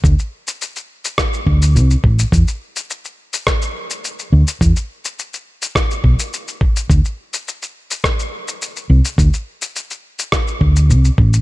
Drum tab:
SH |xx-xxx-xxx-xxx-x|xx-xxx-xxx-xxx-x|xx-xxx-xxx-xxx-x|xx-xxx-xxx-xxx-x|
SD |--------r-------|--------r-------|--------r-------|--------r-------|
BD |o-------o-o---o-|o-------o-------|o-------o-o---o-|o-------o-------|

SH |xx-xxx-xxx-xxx-x|
SD |--------r-------|
BD |o-------o-o---o-|